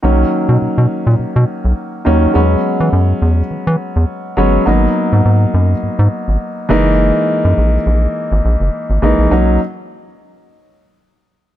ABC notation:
X:1
M:4/4
L:1/16
Q:"Swing 16ths" 1/4=103
K:B
V:1 name="Grand piano"
[D,F,A,C]8 z6 [D,F,A,C]2 | [F,G,B,C]8 z6 [F,G,B,C]2 | [F,A,B,D]8 z6 [E,G,A,D]2- | [E,G,A,D]6 z8 [E,G,A,D]2 |
[F,A,CD]2 z12 z2 |]
V:2 name="Analog synth bass" clef=bass
B,,,2 z B,, B,, B,, z A,, B,, B,, z B,,, z2 D,,2 | E,,2 z E, F,,2 E,,2 E, E, z E,, z2 =G,,,2 | G,,,2 z G,, G,,2 F,,2 G,, G,, z G,,, z2 F,,,2- | F,,,2 z F,, A,,,2 A,,,2 z G,,, A,,, F,,, z G,,, =A,,, ^A,,, |
B,,,2 z12 z2 |]